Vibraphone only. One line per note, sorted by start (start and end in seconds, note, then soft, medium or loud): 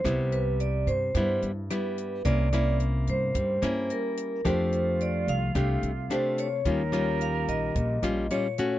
0.00 0.34 C5 medium
0.33 0.61 B4 medium
0.60 0.88 D5 medium
0.87 1.38 C5 medium
1.71 2.21 B4 medium
2.25 2.76 D5 loud
3.10 3.87 C5 medium
3.91 4.47 A#4 medium
4.47 5.02 C5 medium
5.02 5.29 D5 medium
5.29 6.13 F5 medium
6.12 6.37 C5 medium
6.39 7.23 C#5 medium
7.22 7.49 F5 medium
7.49 8.33 D#5 medium
8.32 8.79 C#5 medium